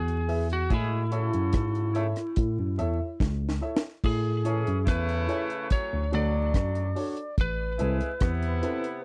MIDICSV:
0, 0, Header, 1, 6, 480
1, 0, Start_track
1, 0, Tempo, 833912
1, 405, Time_signature, 4, 2, 24, 8
1, 5207, End_track
2, 0, Start_track
2, 0, Title_t, "Lead electric guitar"
2, 0, Program_c, 0, 29
2, 0, Note_on_c, 0, 68, 95
2, 270, Note_off_c, 0, 68, 0
2, 304, Note_on_c, 0, 66, 81
2, 417, Note_off_c, 0, 66, 0
2, 425, Note_on_c, 0, 64, 76
2, 1832, Note_off_c, 0, 64, 0
2, 2335, Note_on_c, 0, 68, 84
2, 2787, Note_off_c, 0, 68, 0
2, 2811, Note_on_c, 0, 71, 77
2, 3291, Note_off_c, 0, 71, 0
2, 3293, Note_on_c, 0, 73, 105
2, 3536, Note_off_c, 0, 73, 0
2, 3538, Note_on_c, 0, 74, 96
2, 4229, Note_off_c, 0, 74, 0
2, 4264, Note_on_c, 0, 71, 96
2, 5192, Note_off_c, 0, 71, 0
2, 5207, End_track
3, 0, Start_track
3, 0, Title_t, "Upright piano"
3, 0, Program_c, 1, 0
3, 160, Note_on_c, 1, 64, 83
3, 162, Note_on_c, 1, 68, 73
3, 164, Note_on_c, 1, 71, 75
3, 167, Note_on_c, 1, 76, 87
3, 265, Note_off_c, 1, 64, 0
3, 267, Note_off_c, 1, 68, 0
3, 268, Note_off_c, 1, 71, 0
3, 269, Note_off_c, 1, 76, 0
3, 641, Note_on_c, 1, 64, 87
3, 643, Note_on_c, 1, 69, 80
3, 646, Note_on_c, 1, 73, 81
3, 648, Note_on_c, 1, 76, 92
3, 746, Note_off_c, 1, 64, 0
3, 747, Note_off_c, 1, 69, 0
3, 748, Note_off_c, 1, 73, 0
3, 750, Note_off_c, 1, 76, 0
3, 1119, Note_on_c, 1, 64, 90
3, 1122, Note_on_c, 1, 69, 78
3, 1124, Note_on_c, 1, 73, 83
3, 1126, Note_on_c, 1, 76, 101
3, 1225, Note_off_c, 1, 64, 0
3, 1226, Note_off_c, 1, 69, 0
3, 1227, Note_off_c, 1, 73, 0
3, 1228, Note_off_c, 1, 76, 0
3, 1598, Note_on_c, 1, 64, 82
3, 1601, Note_on_c, 1, 69, 83
3, 1603, Note_on_c, 1, 73, 73
3, 1604, Note_on_c, 1, 76, 97
3, 1704, Note_off_c, 1, 64, 0
3, 1706, Note_off_c, 1, 69, 0
3, 1707, Note_off_c, 1, 73, 0
3, 1708, Note_off_c, 1, 76, 0
3, 1723, Note_on_c, 1, 76, 24
3, 1724, Note_on_c, 1, 73, 21
3, 1772, Note_off_c, 1, 76, 0
3, 1773, Note_off_c, 1, 73, 0
3, 2078, Note_on_c, 1, 64, 82
3, 2079, Note_on_c, 1, 69, 68
3, 2083, Note_on_c, 1, 73, 67
3, 2085, Note_on_c, 1, 76, 84
3, 2184, Note_off_c, 1, 64, 0
3, 2185, Note_off_c, 1, 69, 0
3, 2187, Note_off_c, 1, 73, 0
3, 2188, Note_off_c, 1, 76, 0
3, 2559, Note_on_c, 1, 64, 87
3, 2561, Note_on_c, 1, 68, 76
3, 2563, Note_on_c, 1, 69, 83
3, 2565, Note_on_c, 1, 73, 90
3, 2665, Note_off_c, 1, 64, 0
3, 2666, Note_off_c, 1, 68, 0
3, 2667, Note_off_c, 1, 69, 0
3, 2668, Note_off_c, 1, 73, 0
3, 3038, Note_on_c, 1, 64, 90
3, 3042, Note_on_c, 1, 68, 85
3, 3044, Note_on_c, 1, 69, 74
3, 3045, Note_on_c, 1, 73, 98
3, 3145, Note_off_c, 1, 64, 0
3, 3147, Note_off_c, 1, 68, 0
3, 3147, Note_off_c, 1, 69, 0
3, 3148, Note_off_c, 1, 73, 0
3, 3521, Note_on_c, 1, 62, 92
3, 3523, Note_on_c, 1, 66, 84
3, 3525, Note_on_c, 1, 69, 81
3, 3527, Note_on_c, 1, 73, 88
3, 3626, Note_off_c, 1, 62, 0
3, 3627, Note_off_c, 1, 66, 0
3, 3628, Note_off_c, 1, 69, 0
3, 3629, Note_off_c, 1, 73, 0
3, 4002, Note_on_c, 1, 62, 82
3, 4003, Note_on_c, 1, 66, 70
3, 4007, Note_on_c, 1, 69, 68
3, 4009, Note_on_c, 1, 73, 83
3, 4107, Note_off_c, 1, 62, 0
3, 4107, Note_off_c, 1, 66, 0
3, 4109, Note_off_c, 1, 69, 0
3, 4110, Note_off_c, 1, 73, 0
3, 4482, Note_on_c, 1, 60, 86
3, 4484, Note_on_c, 1, 64, 83
3, 4486, Note_on_c, 1, 69, 77
3, 4489, Note_on_c, 1, 71, 90
3, 4587, Note_off_c, 1, 60, 0
3, 4588, Note_off_c, 1, 64, 0
3, 4589, Note_off_c, 1, 69, 0
3, 4590, Note_off_c, 1, 71, 0
3, 4962, Note_on_c, 1, 60, 85
3, 4964, Note_on_c, 1, 64, 83
3, 4967, Note_on_c, 1, 69, 74
3, 4969, Note_on_c, 1, 71, 90
3, 5066, Note_off_c, 1, 60, 0
3, 5068, Note_off_c, 1, 64, 0
3, 5069, Note_off_c, 1, 69, 0
3, 5070, Note_off_c, 1, 71, 0
3, 5207, End_track
4, 0, Start_track
4, 0, Title_t, "Horn section"
4, 0, Program_c, 2, 61
4, 401, Note_on_c, 2, 56, 100
4, 402, Note_on_c, 2, 64, 100
4, 403, Note_on_c, 2, 68, 118
4, 594, Note_off_c, 2, 56, 0
4, 595, Note_off_c, 2, 64, 0
4, 596, Note_off_c, 2, 68, 0
4, 639, Note_on_c, 2, 69, 92
4, 640, Note_on_c, 2, 66, 85
4, 641, Note_on_c, 2, 49, 84
4, 1099, Note_off_c, 2, 69, 0
4, 1100, Note_off_c, 2, 49, 0
4, 1100, Note_off_c, 2, 66, 0
4, 1117, Note_on_c, 2, 49, 74
4, 1117, Note_on_c, 2, 64, 85
4, 1118, Note_on_c, 2, 57, 71
4, 1192, Note_off_c, 2, 49, 0
4, 1192, Note_off_c, 2, 57, 0
4, 1192, Note_off_c, 2, 64, 0
4, 2561, Note_on_c, 2, 52, 76
4, 2561, Note_on_c, 2, 68, 88
4, 2562, Note_on_c, 2, 61, 80
4, 2754, Note_off_c, 2, 68, 0
4, 2755, Note_off_c, 2, 52, 0
4, 2755, Note_off_c, 2, 61, 0
4, 2796, Note_on_c, 2, 49, 97
4, 2796, Note_on_c, 2, 57, 102
4, 2796, Note_on_c, 2, 64, 119
4, 3258, Note_off_c, 2, 49, 0
4, 3258, Note_off_c, 2, 57, 0
4, 3258, Note_off_c, 2, 64, 0
4, 3277, Note_on_c, 2, 54, 76
4, 3278, Note_on_c, 2, 45, 76
4, 3279, Note_on_c, 2, 61, 91
4, 3473, Note_off_c, 2, 45, 0
4, 3473, Note_off_c, 2, 54, 0
4, 3474, Note_off_c, 2, 61, 0
4, 3519, Note_on_c, 2, 54, 77
4, 3520, Note_on_c, 2, 62, 84
4, 3521, Note_on_c, 2, 45, 73
4, 3979, Note_off_c, 2, 54, 0
4, 3980, Note_off_c, 2, 45, 0
4, 3980, Note_off_c, 2, 62, 0
4, 4481, Note_on_c, 2, 64, 83
4, 4482, Note_on_c, 2, 56, 75
4, 4482, Note_on_c, 2, 68, 84
4, 4675, Note_off_c, 2, 56, 0
4, 4675, Note_off_c, 2, 64, 0
4, 4676, Note_off_c, 2, 68, 0
4, 4719, Note_on_c, 2, 59, 97
4, 4722, Note_on_c, 2, 48, 96
4, 4722, Note_on_c, 2, 64, 119
4, 5179, Note_off_c, 2, 59, 0
4, 5181, Note_off_c, 2, 48, 0
4, 5181, Note_off_c, 2, 64, 0
4, 5207, End_track
5, 0, Start_track
5, 0, Title_t, "Tine electric piano"
5, 0, Program_c, 3, 4
5, 0, Note_on_c, 3, 40, 79
5, 385, Note_off_c, 3, 40, 0
5, 410, Note_on_c, 3, 45, 106
5, 745, Note_off_c, 3, 45, 0
5, 773, Note_on_c, 3, 42, 85
5, 881, Note_off_c, 3, 42, 0
5, 887, Note_on_c, 3, 44, 84
5, 1224, Note_off_c, 3, 44, 0
5, 1368, Note_on_c, 3, 45, 92
5, 1480, Note_off_c, 3, 45, 0
5, 1493, Note_on_c, 3, 42, 88
5, 1601, Note_off_c, 3, 42, 0
5, 1610, Note_on_c, 3, 40, 76
5, 1721, Note_off_c, 3, 40, 0
5, 1847, Note_on_c, 3, 37, 99
5, 2070, Note_off_c, 3, 37, 0
5, 2327, Note_on_c, 3, 45, 104
5, 2664, Note_off_c, 3, 45, 0
5, 2692, Note_on_c, 3, 42, 89
5, 2800, Note_off_c, 3, 42, 0
5, 2807, Note_on_c, 3, 40, 94
5, 3030, Note_off_c, 3, 40, 0
5, 3414, Note_on_c, 3, 38, 84
5, 3521, Note_off_c, 3, 38, 0
5, 3531, Note_on_c, 3, 38, 81
5, 3752, Note_off_c, 3, 38, 0
5, 3770, Note_on_c, 3, 42, 86
5, 3992, Note_off_c, 3, 42, 0
5, 4250, Note_on_c, 3, 33, 90
5, 4472, Note_off_c, 3, 33, 0
5, 4495, Note_on_c, 3, 36, 90
5, 4603, Note_off_c, 3, 36, 0
5, 4730, Note_on_c, 3, 40, 93
5, 4952, Note_off_c, 3, 40, 0
5, 5207, End_track
6, 0, Start_track
6, 0, Title_t, "Drums"
6, 47, Note_on_c, 9, 42, 51
6, 104, Note_off_c, 9, 42, 0
6, 166, Note_on_c, 9, 46, 72
6, 224, Note_off_c, 9, 46, 0
6, 286, Note_on_c, 9, 42, 53
6, 344, Note_off_c, 9, 42, 0
6, 405, Note_on_c, 9, 36, 113
6, 405, Note_on_c, 9, 42, 80
6, 463, Note_off_c, 9, 36, 0
6, 463, Note_off_c, 9, 42, 0
6, 643, Note_on_c, 9, 42, 77
6, 701, Note_off_c, 9, 42, 0
6, 768, Note_on_c, 9, 42, 58
6, 826, Note_off_c, 9, 42, 0
6, 879, Note_on_c, 9, 42, 99
6, 884, Note_on_c, 9, 36, 97
6, 886, Note_on_c, 9, 37, 118
6, 937, Note_off_c, 9, 42, 0
6, 941, Note_off_c, 9, 36, 0
6, 944, Note_off_c, 9, 37, 0
6, 1008, Note_on_c, 9, 42, 45
6, 1065, Note_off_c, 9, 42, 0
6, 1121, Note_on_c, 9, 42, 73
6, 1179, Note_off_c, 9, 42, 0
6, 1243, Note_on_c, 9, 42, 56
6, 1248, Note_on_c, 9, 37, 60
6, 1301, Note_off_c, 9, 42, 0
6, 1306, Note_off_c, 9, 37, 0
6, 1359, Note_on_c, 9, 42, 94
6, 1364, Note_on_c, 9, 36, 108
6, 1417, Note_off_c, 9, 42, 0
6, 1422, Note_off_c, 9, 36, 0
6, 1605, Note_on_c, 9, 42, 67
6, 1663, Note_off_c, 9, 42, 0
6, 1843, Note_on_c, 9, 36, 106
6, 1848, Note_on_c, 9, 38, 55
6, 1901, Note_off_c, 9, 36, 0
6, 1906, Note_off_c, 9, 38, 0
6, 2007, Note_on_c, 9, 38, 64
6, 2064, Note_off_c, 9, 38, 0
6, 2167, Note_on_c, 9, 38, 98
6, 2225, Note_off_c, 9, 38, 0
6, 2323, Note_on_c, 9, 36, 106
6, 2325, Note_on_c, 9, 49, 94
6, 2381, Note_off_c, 9, 36, 0
6, 2382, Note_off_c, 9, 49, 0
6, 2562, Note_on_c, 9, 42, 70
6, 2619, Note_off_c, 9, 42, 0
6, 2688, Note_on_c, 9, 42, 57
6, 2746, Note_off_c, 9, 42, 0
6, 2802, Note_on_c, 9, 42, 102
6, 2804, Note_on_c, 9, 36, 103
6, 2810, Note_on_c, 9, 37, 123
6, 2860, Note_off_c, 9, 42, 0
6, 2861, Note_off_c, 9, 36, 0
6, 2867, Note_off_c, 9, 37, 0
6, 2929, Note_on_c, 9, 42, 51
6, 2987, Note_off_c, 9, 42, 0
6, 3045, Note_on_c, 9, 42, 73
6, 3102, Note_off_c, 9, 42, 0
6, 3166, Note_on_c, 9, 42, 58
6, 3224, Note_off_c, 9, 42, 0
6, 3283, Note_on_c, 9, 42, 101
6, 3286, Note_on_c, 9, 36, 99
6, 3340, Note_off_c, 9, 42, 0
6, 3343, Note_off_c, 9, 36, 0
6, 3528, Note_on_c, 9, 42, 70
6, 3586, Note_off_c, 9, 42, 0
6, 3766, Note_on_c, 9, 36, 107
6, 3767, Note_on_c, 9, 42, 86
6, 3773, Note_on_c, 9, 37, 103
6, 3823, Note_off_c, 9, 36, 0
6, 3825, Note_off_c, 9, 42, 0
6, 3831, Note_off_c, 9, 37, 0
6, 3887, Note_on_c, 9, 42, 55
6, 3945, Note_off_c, 9, 42, 0
6, 4009, Note_on_c, 9, 46, 80
6, 4066, Note_off_c, 9, 46, 0
6, 4127, Note_on_c, 9, 42, 52
6, 4184, Note_off_c, 9, 42, 0
6, 4246, Note_on_c, 9, 36, 116
6, 4247, Note_on_c, 9, 42, 85
6, 4304, Note_off_c, 9, 36, 0
6, 4305, Note_off_c, 9, 42, 0
6, 4484, Note_on_c, 9, 42, 68
6, 4541, Note_off_c, 9, 42, 0
6, 4608, Note_on_c, 9, 42, 57
6, 4666, Note_off_c, 9, 42, 0
6, 4723, Note_on_c, 9, 42, 94
6, 4726, Note_on_c, 9, 36, 117
6, 4730, Note_on_c, 9, 37, 114
6, 4780, Note_off_c, 9, 42, 0
6, 4784, Note_off_c, 9, 36, 0
6, 4788, Note_off_c, 9, 37, 0
6, 4850, Note_on_c, 9, 42, 53
6, 4907, Note_off_c, 9, 42, 0
6, 4967, Note_on_c, 9, 42, 78
6, 5024, Note_off_c, 9, 42, 0
6, 5088, Note_on_c, 9, 42, 57
6, 5145, Note_off_c, 9, 42, 0
6, 5207, End_track
0, 0, End_of_file